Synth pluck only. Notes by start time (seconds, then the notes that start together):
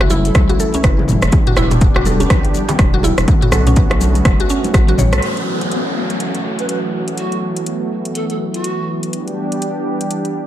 0.01 F#4
0.10 E4
0.49 F#4
0.60 A4
0.74 C#4
0.84 B4
1.47 F#4
1.57 E4
1.96 F#4
2.06 A4
2.20 C#4
2.30 B4
2.94 F#4
3.04 E4
3.42 F#4
3.53 A4
3.67 C#4
3.77 B4
4.40 F#4
4.50 C#4
4.74 F#4
4.89 F#4
4.98 C#5
5.13 A4